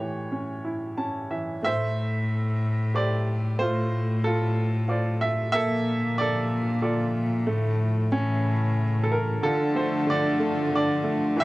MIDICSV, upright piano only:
0, 0, Header, 1, 2, 480
1, 0, Start_track
1, 0, Key_signature, -1, "minor"
1, 0, Tempo, 650054
1, 1210, Time_signature, 3, 2, 24, 8
1, 8448, End_track
2, 0, Start_track
2, 0, Title_t, "Upright piano"
2, 0, Program_c, 0, 0
2, 0, Control_c, 0, 64, 127
2, 0, Note_on_c, 0, 45, 50
2, 0, Note_on_c, 0, 67, 49
2, 0, Note_on_c, 0, 73, 71
2, 1, Note_on_c, 0, 52, 41
2, 234, Note_on_c, 0, 61, 42
2, 477, Note_on_c, 0, 64, 39
2, 710, Note_off_c, 0, 61, 0
2, 720, Note_on_c, 0, 81, 49
2, 721, Note_on_c, 0, 61, 42
2, 939, Note_off_c, 0, 52, 0
2, 948, Note_off_c, 0, 73, 0
2, 948, Note_off_c, 0, 81, 0
2, 953, Note_off_c, 0, 67, 0
2, 964, Note_on_c, 0, 52, 34
2, 965, Note_on_c, 0, 76, 46
2, 1177, Note_off_c, 0, 45, 0
2, 1185, Note_off_c, 0, 64, 0
2, 1192, Note_off_c, 0, 76, 0
2, 1193, Note_off_c, 0, 61, 0
2, 1201, Note_off_c, 0, 52, 0
2, 1201, Note_on_c, 0, 57, 51
2, 1214, Note_on_c, 0, 76, 88
2, 1221, Control_c, 0, 64, 0
2, 1227, Note_on_c, 0, 72, 62
2, 1337, Control_c, 0, 64, 127
2, 1907, Note_off_c, 0, 76, 0
2, 1913, Note_off_c, 0, 72, 0
2, 2172, Note_on_c, 0, 67, 42
2, 2175, Note_on_c, 0, 69, 38
2, 2176, Note_on_c, 0, 72, 47
2, 2183, Note_on_c, 0, 74, 72
2, 2621, Note_off_c, 0, 57, 0
2, 2639, Note_off_c, 0, 67, 0
2, 2639, Note_off_c, 0, 72, 0
2, 2641, Note_off_c, 0, 69, 0
2, 2650, Note_on_c, 0, 57, 49
2, 2650, Note_on_c, 0, 72, 82
2, 2666, Control_c, 0, 64, 0
2, 2672, Note_on_c, 0, 65, 62
2, 2674, Note_off_c, 0, 74, 0
2, 2774, Control_c, 0, 64, 127
2, 3102, Note_off_c, 0, 72, 0
2, 3132, Note_on_c, 0, 69, 75
2, 3139, Note_off_c, 0, 65, 0
2, 3151, Note_on_c, 0, 65, 58
2, 3593, Note_off_c, 0, 65, 0
2, 3604, Note_on_c, 0, 65, 48
2, 3609, Note_on_c, 0, 72, 38
2, 3613, Note_on_c, 0, 74, 50
2, 3848, Note_on_c, 0, 76, 78
2, 3870, Note_off_c, 0, 69, 0
2, 4056, Note_off_c, 0, 57, 0
2, 4067, Note_off_c, 0, 76, 0
2, 4070, Note_off_c, 0, 65, 0
2, 4072, Note_off_c, 0, 72, 0
2, 4074, Note_off_c, 0, 74, 0
2, 4078, Note_on_c, 0, 76, 107
2, 4083, Note_on_c, 0, 58, 56
2, 4097, Control_c, 0, 64, 0
2, 4101, Note_on_c, 0, 69, 72
2, 4235, Control_c, 0, 64, 127
2, 4564, Note_on_c, 0, 74, 81
2, 4575, Note_off_c, 0, 76, 0
2, 4576, Note_off_c, 0, 69, 0
2, 4587, Note_on_c, 0, 69, 58
2, 5025, Note_off_c, 0, 69, 0
2, 5030, Note_off_c, 0, 74, 0
2, 5036, Note_on_c, 0, 69, 48
2, 5037, Note_on_c, 0, 65, 44
2, 5041, Note_on_c, 0, 74, 50
2, 5491, Note_off_c, 0, 58, 0
2, 5505, Note_off_c, 0, 65, 0
2, 5505, Note_off_c, 0, 69, 0
2, 5507, Note_off_c, 0, 74, 0
2, 5514, Note_on_c, 0, 57, 60
2, 5533, Control_c, 0, 64, 0
2, 5667, Control_c, 0, 64, 127
2, 5983, Note_off_c, 0, 57, 0
2, 5996, Note_on_c, 0, 61, 72
2, 6012, Control_c, 0, 64, 0
2, 6134, Control_c, 0, 64, 127
2, 6671, Note_on_c, 0, 69, 63
2, 6724, Note_off_c, 0, 69, 0
2, 6732, Note_on_c, 0, 70, 66
2, 6934, Note_off_c, 0, 61, 0
2, 6960, Note_on_c, 0, 50, 56
2, 6965, Note_on_c, 0, 69, 79
2, 6974, Control_c, 0, 64, 0
2, 6976, Note_off_c, 0, 70, 0
2, 6979, Note_on_c, 0, 65, 56
2, 7092, Control_c, 0, 64, 127
2, 7198, Note_on_c, 0, 57, 52
2, 7209, Note_on_c, 0, 72, 70
2, 7213, Note_off_c, 0, 69, 0
2, 7423, Note_off_c, 0, 50, 0
2, 7434, Note_on_c, 0, 50, 57
2, 7454, Note_off_c, 0, 72, 0
2, 7457, Note_on_c, 0, 74, 81
2, 7661, Note_off_c, 0, 65, 0
2, 7665, Note_off_c, 0, 57, 0
2, 7676, Note_on_c, 0, 57, 46
2, 7901, Note_off_c, 0, 50, 0
2, 7912, Note_on_c, 0, 50, 48
2, 7930, Note_off_c, 0, 74, 0
2, 7941, Note_on_c, 0, 74, 75
2, 8139, Note_off_c, 0, 57, 0
2, 8150, Note_on_c, 0, 57, 53
2, 8380, Note_off_c, 0, 50, 0
2, 8387, Note_off_c, 0, 57, 0
2, 8388, Note_on_c, 0, 52, 63
2, 8408, Control_c, 0, 64, 0
2, 8418, Note_on_c, 0, 76, 96
2, 8423, Note_off_c, 0, 74, 0
2, 8426, Note_on_c, 0, 67, 67
2, 8448, Note_off_c, 0, 52, 0
2, 8448, Note_off_c, 0, 67, 0
2, 8448, Note_off_c, 0, 76, 0
2, 8448, End_track
0, 0, End_of_file